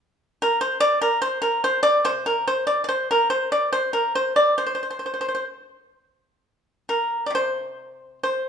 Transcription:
0.42 A#4
0.61 C5
0.80 D5
1.02 A#4
1.22 C5
1.42 A#4
1.64 C5
1.83 D5
2.05 C3 C5
2.26 A#4
2.47 C5
2.67 D5
2.84 D5
2.89 C5
3.11 A#4
3.30 C5
3.52 D5
3.73 C5
3.93 A#4
4.15 C5
4.36 D5
4.58 C5
4.66 C5
4.75 C5
4.83 C5
4.90 C5
4.99 C5
5.06 C5
5.14 C5
5.21 C5
5.28 C5
5.35 C5
6.89 A#4
7.26 D5
7.30 C3
7.35 C5
8.23 C5

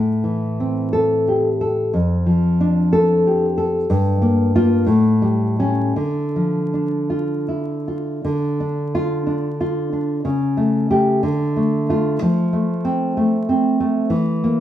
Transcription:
Already playing: A2
0.24 E3
0.60 C4
0.93 A4
1.28 G4
1.61 A4
1.93 F2
2.26 F3
2.61 D4
2.93 A4
3.27 G4
3.58 A4
3.90 G2
4.22 A#3
4.55 A#3 F4
4.87 A2
5.22 G3
5.59 G3 C#4
5.96 D3
6.36 F3
6.74 D4
7.10 F4
7.48 E4
7.88 F4
8.25 D3
8.60 D4
8.95 F4
9.27 D4
9.61 F4
9.93 D4
10.25 C#3
10.57 A3
10.90 A3 G4
11.23 D3
11.56 A3
11.89 A3 F4
12.22 F3
12.53 A3
12.85 C4
13.17 A3
13.49 C4
13.80 A3
14.10 E3
14.44 A#3

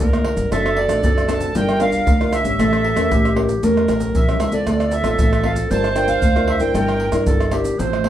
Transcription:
0.00 D2 D3 F4 A4 A#4
0.13 A#3 F4, pandeiro, tamborim, maracas, surdo
0.25 pandeiro, tamborim
0.37 G1, pandeiro, maracas, surdo
0.51 F#1 F#3 C4 D4 A4 E5, pandeiro, tamborim, maracas, surdo
0.66 pandeiro, tamborim, maracas
0.77 D5, pandeiro
0.88 A1 C4 D4 A4, pandeiro, tamborim, maracas
1.03 F#1 F#3 A4, pandeiro, maracas, surdo
1.18 pandeiro, tamborim, maracas
1.28 C4 D4 A4 A5, pandeiro, tamborim, maracas
1.41 pandeiro, maracas, surdo
1.55 G1 G3 D4 F4 A#4 G5, pandeiro, maracas, surdo
1.69 pandeiro, tamborim, maracas
1.80 D4 F4 A#4 F5, pandeiro, tamborim, maracas
1.92 pandeiro, maracas, surdo
2.07 D2 D3, pandeiro, maracas, surdo
2.21 D4 F4 A#4, pandeiro, tamborim, maracas, surdo
2.33 E5, pandeiro, tamborim, maracas
2.44 G#1 C#4 G4, pandeiro, maracas, surdo
2.59 A1 A3 A4, pandeiro, tamborim, maracas, surdo
2.73 pandeiro, tamborim, maracas
2.84 pandeiro
2.96 E2 C#4 G4 A#4, pandeiro, tamborim, maracas
3.11 A1 E3 G4, pandeiro, maracas, surdo
3.25 pandeiro, tamborim, maracas
3.36 C#4 G4 A#4, pandeiro, tamborim
3.49 pandeiro, maracas, surdo
3.63 E2 A3 C#4 G4 A#4, pandeiro, maracas, surdo
3.77 pandeiro, tamborim, maracas
3.88 A1 C#4 G4 A#4, pandeiro, tamborim, maracas
4.00 pandeiro, maracas, surdo
4.14 A#1 E3 E5, pandeiro, maracas, surdo
4.29 C#4 G4 A#4, pandeiro, tamborim, maracas, surdo
4.40 C#2 E5, pandeiro, tamborim, maracas, surdo
4.52 C4 F4 A4 D5, pandeiro, maracas, surdo
4.67 D2 D3 A4, pandeiro, tamborim, maracas, surdo
4.80 pandeiro, tamborim, maracas
4.91 E5, pandeiro, maracas
5.03 A1 C4 F4 A4, pandeiro, tamborim, maracas
5.18 A1 A2, pandeiro, maracas, surdo
5.33 pandeiro, tamborim, maracas
5.44 C4 F4 A4 F5, pandeiro, tamborim
5.56 pandeiro, maracas, surdo
5.70 G1 G3 D4 F4 A#4 C5 A5, pandeiro, maracas, surdo
5.84 pandeiro, tamborim, maracas
5.96 D4 F4 A#4 G5, pandeiro, tamborim, maracas
6.08 F5, pandeiro, maracas, surdo
6.22 D2 D3, pandeiro, maracas, surdo
6.36 D4 F4 A#4, pandeiro, tamborim, maracas, surdo
6.48 E5, pandeiro, tamborim, surdo
6.60 G1 D4 E4 A#4 G5, pandeiro, maracas, surdo
6.74 G1 G3 A#4, pandeiro, tamborim, maracas, surdo
6.88 pandeiro, tamborim, maracas
7.00 pandeiro
7.12 G2 D4 E4 A#4, pandeiro, tamborim, maracas
7.26 G1 G3 A4, pandeiro, maracas, surdo
7.40 pandeiro, tamborim, maracas
7.51 D4 E4 G4 A#4, pandeiro, tamborim, maracas
7.65 pandeiro, maracas, surdo
7.79 A1 A2 F3 C4 E4 C5, pandeiro, maracas, surdo
7.93 pandeiro, tamborim, maracas
8.04 F3 C4 E4, pandeiro, tamborim

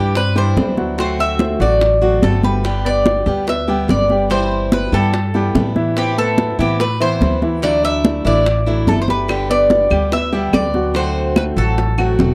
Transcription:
Already playing: G2 E3 G3 D4 E4 G4 G5
0.15 C4 B4 C5 D5, muted steel-string acoustic guitar stroke, high bongo, high conga
0.36 E3 G3 D4 E4 G4 C5 G5, high bongo, high conga
0.56 D2 E3 G3 D4 E4, high bongo, low bongo, high conga
0.77 F#3 F#4 F#5, high bongo, high conga
0.98 D3 F#3 A3 C4 F#4 C5 F#5, high bongo, high conga
1.19 E5, high conga
1.39 A3 A4 C5, high bongo, high conga
1.60 A1 F#3 A3 C4 F#4 D5 F#5, high bongo, high conga
1.81 muted steel-string acoustic guitar stroke, high bongo, high conga
2.02 F#3 A3 C4 F#4 F#5, high bongo, high conga
2.22 G1 D3 A3 C4 F#4 A4, high bongo, low bongo, high conga
2.43 G3 B4 G5, high bongo, high conga
2.64 D3 G3 B3 G4, high bongo, high conga
2.85 B3 B4 D5, high conga
3.06 high bongo, high conga
3.26 D2 G3 B3 G4 G5, high bongo, high conga
3.47 B3 B4 D5 E5, muted steel-string acoustic guitar stroke, high bongo, high conga
3.68 G3 B3 G4 G5, high bongo, high conga
3.88 G1 D3 G3 B3 G4 D5, high bongo, low bongo, high conga
4.09 G3 G4 G5, high bongo, high conga
4.30 C3 E3 G3 E4 G4 C5 G5, high bongo, high conga
4.52 high conga
4.72 B3 B4 C5, high bongo, high conga
4.92 G2 E3 G3 B3 E4 G4 A4 G5, high bongo, high conga
5.13 muted steel-string acoustic guitar stroke, high bongo, high conga
5.34 E3 G3 B3 E4 G4 G5, high bongo, high conga
5.55 A2 E3 G3 B3 E4, high bongo, low bongo, high conga
5.76 E3 E4 E5, high bongo, high conga
5.96 E3 B3 C4 E4 G4, high bongo, high conga
6.17 A3 A4 B4, high conga
6.38 high bongo, high conga
6.59 A2 E3 B3 C4 E4 G4 E5, high bongo, high conga
6.79 A3 A4 B4, muted steel-string acoustic guitar stroke, high bongo, high conga
7.00 E3 B3 C4 E4 C5 E5, high bongo, high conga
7.21 D2 E3 B3 C4 E4, high bongo, low bongo, high conga
7.42 E3 E4 E5, high bongo, high conga
7.62 D3 E3 F#3 A3 D4 E4 D5 E5, high bongo, high conga
7.84 E5, high conga
8.05 A3 A4 D5, high bongo, high conga
8.24 A1 E3 F#3 A3 D4 E4 D5 E5, high bongo, high conga
8.46 muted steel-string acoustic guitar stroke, high bongo, high conga
8.66 E3 F#3 A3 D4 E4 E5, high bongo, high conga
8.87 G1 F#3 A3 D4 E4 A4, high bongo, low bongo, high conga
9.02 C5
9.08 G4 B4 G5, high bongo, high conga
9.28 D3 G3 B3 G4, high bongo, high conga, claves
9.50 B3 B4 D5, high conga
9.70 high bongo, high conga
9.90 D2 G3 B3 G4 G5, high bongo, high conga, claves
10.12 B3 B4 D5 E5, muted steel-string acoustic guitar stroke, high bongo, high conga
10.32 G3 B3 G4 G5, high bongo, high conga
10.53 D2 D3 G3 B3 G4 D5, high bongo, low bongo, high conga, claves
10.74 F#3 F#4 F#5, high bongo, high conga
10.94 D3 F#3 A3 C4 F#4 C5 F#5, high bongo, high conga
11.16 high conga
11.36 A3 A4 B4 C5, high bongo, high conga, claves
11.56 A1 F#3 A3 C4 F#4 A4 F#5, high bongo, high conga
11.78 muted steel-string acoustic guitar stroke, high bongo, high conga
11.98 F#3 A3 C4 F#4 F#5, high bongo, high conga, claves
12.18 E1 D3 A3 C4 F#4, high bongo, low bongo, high conga

